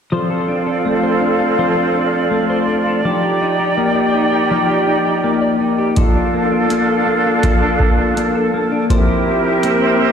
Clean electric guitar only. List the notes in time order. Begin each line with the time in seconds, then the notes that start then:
0.12 F3 C5
0.30 A4
0.48 D4
0.66 A4
0.85 A3
1.03 C5
1.21 D4
1.40 A4
1.58 F3 C5
1.77 A4
1.95 D4
2.13 A4
2.31 A3
2.50 C5
2.67 D4
2.86 A4
3.05 F3 D5
3.23 G4
3.41 D#4
3.59 G4
3.77 A#3
3.96 D5
4.14 D#4
4.32 G4
4.51 F3 D5
4.69 G4
4.87 D#4
5.06 G4
5.24 A#3
5.42 D5
5.60 D#4
5.78 G4
5.97 F3 A4
6.15 D4
6.34 A#3
6.52 D4
6.70 A#3
6.89 A4
7.07 A#3
7.26 D4
7.44 F3 A4
7.62 D4
7.81 A#3
7.99 D4
8.17 A#3
8.35 A4
8.54 A#3
8.72 D4
8.90 F3 C5
9.08 G4
9.27 E4
9.45 G4
9.63 A#3
9.82 C5
10.00 E4